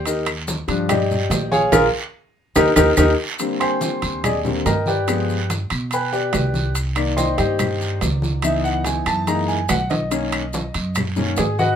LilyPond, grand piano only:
<<
  \new Staff \with { instrumentName = "Grand piano" } { \time 4/4 \key aes \lydian \tempo 4 = 143 <ees' g' bes' ees''>8 r4. <g' d'' ees'' g''>4. <aes' des'' f'' aes''>8 | <f' aes' bes'>8 r4. <ees' g' bes'>8 <ees' g' bes'>8 <ees' g' bes'>8 r8 | r8 <c'' g'' aes'' c'''>4. <aes' d'' ees'' aes''>8 r8 <bes' ees'' g'' bes''>8 <g' ces'' d'' g''>8~ | <g' ces'' d'' g''>4 r4 <b' g'' aes'' b''>8 <g' b' d'' g''>4. |
r4 <c'' ees'' g'' c'''>8 <g' c'' ees'' g''>4. r4 | fes''8 ges''8 aes''8 a''8 bes''8 aes''8 ges''8 ees''8~ | ees''2 r4 <aes' aes''>8 <fis' b' dis'' fis''>8 | }
  \new Staff \with { instrumentName = "Grand piano" } { \time 4/4 \key aes \lydian r4. <f g d'>8 r2 | r1 | <d g bes c'>2~ <d g bes c'>8 <d g bes c'>8 r4 | <f aes b>8 r2. r8 |
r8 <ees bes d''>2.~ <ees bes d''>8 | <fes ces' ees'>2 <fes aes bes ees'>8 r4. | <dis ais cis'>8 r2 <dis ais cis'>8 r4 | }
>>